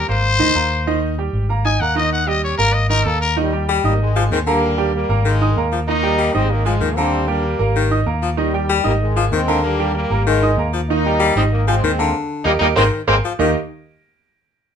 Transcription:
0.08 fingered electric bass G#1, grand piano A#3 A#4 A#5, trumpet C5
0.39 fingered electric bass D2, grand piano D#3 D#4 D#5
0.55 fingered electric bass D#2, grand piano A#3 A#4 A#5
0.87 grand piano D#3 D#4 D#5
1.18 grand piano G3 G4 G5
1.33 fingered electric bass G#1
1.49 grand piano A#3 A#4 A#5
1.65 grand piano D#4 D#5 D#6, trumpet G#5
1.80 fingered electric bass D#2, grand piano A#3 A#4 A#5, trumpet F#5
1.95 grand piano D#3 D#4 D#5, trumpet D#5
2.13 trumpet F#5
2.27 grand piano G3 G4 G5, trumpet D#5
2.44 trumpet C#5
2.58 fingered electric bass G#1, grand piano A#3 A#4 A#5, trumpet A#4
2.74 trumpet D#5
2.90 grand piano D#3 D#4 D#5, trumpet A#4
3.05 fingered electric bass D#2, grand piano A#3 A#4 A#5, trumpet A4
3.21 trumpet A#4
3.37 grand piano D#3 D#4 D#5, trombone section D#3 G3
3.53 grand piano G3 G4 G5
3.69 baritone saxophone G3
3.84 fingered electric bass G#1, trombone section G3 A#3, grand piano D#4 D#5 D#6
4.01 trombone section D#3 G#3
4.16 baritone saxophone F3, grand piano G#3 G#4 G#5
4.31 fingered electric bass D#2, baritone saxophone D#3, trombone section G#3 C4
4.47 baritone saxophone D3, trombone section G3 A#3, grand piano A#3 A#4 A#5
4.78 grand piano G3 G4 G5
4.95 trombone section G3 A#3
5.09 fingered electric bass G#1, grand piano A#3 A#4 A#5
5.25 baritone saxophone D#3, trombone section D#3 G#3
5.41 grand piano D#4 D#5 D#6
5.56 fingered electric bass D#2, grand piano A#3 A#4 A#5
5.72 baritone saxophone F3
5.88 grand piano D#3 D#4 D#5, trombone section A#3 D#4
6.03 grand piano G3 G4 G5
6.18 baritone saxophone G3
6.34 fingered electric bass G#1, trombone section G#3 C4, grand piano D#4 D#5 D#6
6.51 trombone section D#3 A#3
6.65 baritone saxophone F3, trombone section F3 G#3, grand piano G#3 G#4 G#5
6.81 fingered electric bass D#2, baritone saxophone D#3
6.97 baritone saxophone D3, trombone section G3 C4, grand piano A#3 A#4 A#5
7.27 grand piano G3 G4 G5, trombone section G3 A#3
7.59 fingered electric bass G#1, grand piano A#3 A#4 A#5
7.76 baritone saxophone D#3
7.91 grand piano D#4 D#5 D#6
8.06 fingered electric bass D#2, grand piano A#3 A#4 A#5
8.22 baritone saxophone F3
8.37 grand piano D#3 D#4 D#5, trombone section D#3 G3
8.54 grand piano G3 G4 G5
8.69 baritone saxophone G3
8.84 fingered electric bass G#1, trombone section G3 A#3, grand piano D#4 D#5 D#6
9.01 trombone section D#3 G#3
9.16 baritone saxophone F3, grand piano G#3 G#4 G#5
9.32 fingered electric bass D#2, baritone saxophone D#3, trombone section G#3 C4
9.47 baritone saxophone D3, grand piano A#3 A#4 A#5
9.63 trombone section G3 A#3
9.79 grand piano G3 G4 G5
9.95 trombone section G3 A#3
10.10 fingered electric bass G#1, grand piano A#3 A#4 A#5
10.26 trombone section D#3 G#3, baritone saxophone D#3
10.42 grand piano D#4 D#5 D#6
10.57 fingered electric bass D#2, grand piano A#3 A#4 A#5
10.73 baritone saxophone F3
10.89 grand piano D#3 D#4 D#5, trombone section A#3 D#4
11.06 grand piano G3 G4 G5
11.20 baritone saxophone G3
11.36 fingered electric bass G#1, trombone section G#3 C4, grand piano D#4 D#5 D#6
11.52 trombone section D#3 A#3
11.67 baritone saxophone F3, grand piano G#3 G#4 G#5, trombone section G#3 C4
11.83 fingered electric bass D#2, baritone saxophone D#3
11.98 baritone saxophone D3, grand piano A#3 A#4 A#5
12.45 fingered electric bass D#2, trombone section G3 A#3 D#4, grand piano G4 A#4 D#5
12.59 fingered electric bass D#2, trombone section G3 A#3 D#4, grand piano G4 A#4 D#5
12.76 fingered electric bass G#1, baritone saxophone D#3, trombone section G#3 A#3 C4, grand piano G#4 A#4 C5
13.07 fingered electric bass G#1, trombone section G#3 A#3 C4, grand piano G#4 A#4 C5
13.25 baritone saxophone F3
13.39 fingered electric bass D#2, grand piano D#3 A#3 D#4 G4 A#4 D#5, baritone saxophone D#3

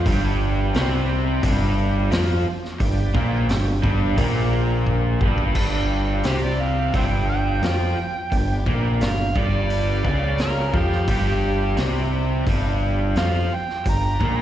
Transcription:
0.03 picked electric bass G1, overdriven electric guitar G2, tonewheel organ G4 B4 D5 G5, kick, open hi-hat
0.07 overdriven electric guitar G3
0.73 picked electric bass C2, overdriven electric guitar C3 C4, tonewheel organ G4 B4 D5 G5, snare, open hi-hat
1.43 picked electric bass G1, overdriven electric guitar G2 G3, kick, open hi-hat
2.10 picked electric bass F2, overdriven electric guitar F3 F4, snare, open hi-hat
2.65 snare
2.79 picked electric bass G1, overdriven electric guitar G2, tonewheel organ G4 B4 D5 G5, kick, open hi-hat
3.14 picked electric bass A#1, overdriven electric guitar A#2 A#3, kick
3.49 picked electric bass G1, overdriven electric guitar G2, tonewheel organ G4 D5 G5, snare, open hi-hat
3.83 picked electric bass G1, overdriven electric guitar G2 G3, kick
4.17 picked electric bass A#1, overdriven electric guitar A#2 A#3, kick, open hi-hat
4.87 kick
5.21 picked electric bass G1, overdriven electric guitar G2 G3, kick
5.38 kick
5.55 picked electric bass G1, overdriven electric guitar G2 G3, tonewheel organ G4 B4 D5 G5, kick, crash
6.23 picked electric bass C2, overdriven electric guitar C3 C4, tonewheel organ G4 B4 D5, harmonica G4, snare, open hi-hat
6.28 tonewheel organ G5
6.44 harmonica D5
6.62 harmonica F5
6.94 picked electric bass G1, overdriven electric guitar G2 G3, harmonica C5 E5 G5, kick, open hi-hat
7.30 harmonica G5
7.62 picked electric bass F2, overdriven electric guitar F3 F4, snare, open hi-hat
8.30 picked electric bass G1, overdriven electric guitar G2, tonewheel organ G4 B4 D5 G5, kick, open hi-hat
8.66 picked electric bass A#1, overdriven electric guitar A#2 A#3, kick
9.01 picked electric bass G1, overdriven electric guitar G2, tonewheel organ G4 B4 D5 G5, harmonica A#4 D5 F5, snare, open hi-hat
9.35 picked electric bass G1, overdriven electric guitar G2 G3, harmonica D5, kick
9.70 open hi-hat
10.04 picked electric bass C#2, overdriven electric guitar C#3 C#4, kick
10.38 harmonica A#4, snare, open hi-hat
10.73 picked electric bass F2, overdriven electric guitar F3 F4, harmonica G4, kick
10.92 snare
11.07 picked electric bass G1, overdriven electric guitar G2 G3, tonewheel organ G4 B4 D5 G5, harmonica G4, kick, open hi-hat
11.77 picked electric bass C2, overdriven electric guitar C3 C4, tonewheel organ G4 B4 D5, snare, open hi-hat
11.82 tonewheel organ G5
12.47 picked electric bass G1, overdriven electric guitar G2 G3, kick, open hi-hat
13.16 picked electric bass F2, overdriven electric guitar F3 F4, harmonica F5, snare, open hi-hat
13.55 harmonica G5
13.70 snare
13.85 picked electric bass G1, overdriven electric guitar G2, tonewheel organ G4 B4 D5, harmonica A#5, kick, open hi-hat
13.90 tonewheel organ G5
14.20 picked electric bass A#1, overdriven electric guitar A#2 A#3, kick

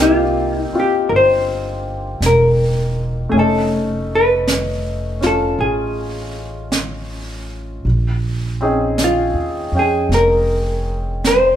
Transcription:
Already playing: upright bass C2, grand piano A#3 C4
0.00 grand piano D#4 G4, hollow-body jazz guitar F4
0.62 hollow-body jazz guitar D#4
0.72 grand piano C4 F4, muted upright bass stroke
0.80 hollow-body jazz guitar G4
1.09 upright bass G1, hollow-body jazz guitar A#4, brush sweep
1.16 hollow-body jazz guitar C5
2.20 upright bass E1, brush sweep, snare, hi-hat pedal
2.26 hollow-body jazz guitar A#4
3.29 upright bass F1, grand piano A3 C#4, hollow-body jazz guitar G#4
3.35 grand piano D#4, brush sweep
3.39 hollow-body jazz guitar A4
4.15 hollow-body jazz guitar B4
4.48 brush sweep, snare, hi-hat pedal
5.21 grand piano C#4 F4, snare
5.26 hollow-body jazz guitar A4
5.59 upright bass A1, hollow-body jazz guitar G#4, brush sweep
6.72 brush sweep, snare, hi-hat pedal
7.85 upright bass A#1, brush sweep
8.61 grand piano C4 C#4 D#4 G#4
8.98 brush sweep, snare, hi-hat pedal
9.04 hollow-body jazz guitar F4
9.34 upright bass D#2
9.72 upright bass F2, grand piano C#4
9.77 hollow-body jazz guitar G#4, grand piano G5
10.09 upright bass F1, brush sweep, snare
10.14 hollow-body jazz guitar A#4
11.24 hollow-body jazz guitar C5, brush sweep, snare, hi-hat pedal

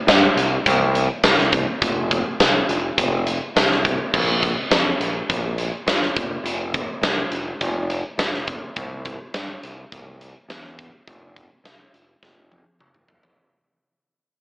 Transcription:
0.07 fingered electric bass G2, snare, closed hi-hat, tambourine
0.36 fingered electric bass C2, closed hi-hat
0.66 fingered electric bass C2, kick, closed hi-hat
0.95 closed hi-hat
1.24 fingered electric bass C2, snare, closed hi-hat, tambourine
1.38 snare
1.52 kick, closed hi-hat
1.82 fingered electric bass F1, kick, closed hi-hat
2.11 kick, closed hi-hat
2.40 fingered electric bass C2, snare, closed hi-hat, tambourine
2.69 fingered electric bass F1, closed hi-hat
2.97 fingered electric bass F1, kick, closed hi-hat
3.27 closed hi-hat
3.56 fingered electric bass C2, snare, closed hi-hat, tambourine
3.71 snare
3.85 kick, closed hi-hat
4.14 fingered electric bass A#1, kick, crash
4.43 kick, closed hi-hat
4.71 fingered electric bass F2, snare, closed hi-hat, tambourine
5.00 fingered electric bass A#1, closed hi-hat
5.29 fingered electric bass A#1, kick, closed hi-hat
5.58 closed hi-hat
5.86 fingered electric bass G1, snare, closed hi-hat, tambourine
6.02 snare
6.16 fingered electric bass F1, kick, closed hi-hat
6.44 fingered electric bass F1, closed hi-hat
6.74 kick, closed hi-hat
7.01 fingered electric bass C2, snare, closed hi-hat, tambourine
7.31 fingered electric bass F1, closed hi-hat
7.61 fingered electric bass F1, kick, closed hi-hat
7.90 closed hi-hat
8.18 fingered electric bass F1, snare, closed hi-hat, tambourine
8.34 snare
8.47 kick, closed hi-hat
8.76 fingered electric bass C2, kick, closed hi-hat
9.05 kick, closed hi-hat
9.34 fingered electric bass G2, snare, closed hi-hat, tambourine
9.63 fingered electric bass C2, closed hi-hat
9.92 fingered electric bass C2, kick, closed hi-hat
10.21 closed hi-hat
10.49 fingered electric bass E2, snare, closed hi-hat, tambourine
10.64 snare
10.79 kick, closed hi-hat
11.07 fingered electric bass F1, kick, closed hi-hat
11.36 kick, closed hi-hat
11.64 fingered electric bass C2, snare, closed hi-hat, tambourine
11.94 fingered electric bass F1, closed hi-hat
12.22 fingered electric bass F1, kick, snare
12.52 high tom
12.79 fingered electric bass F1, mid tom
12.94 mid tom
13.08 floor tom
13.23 floor tom

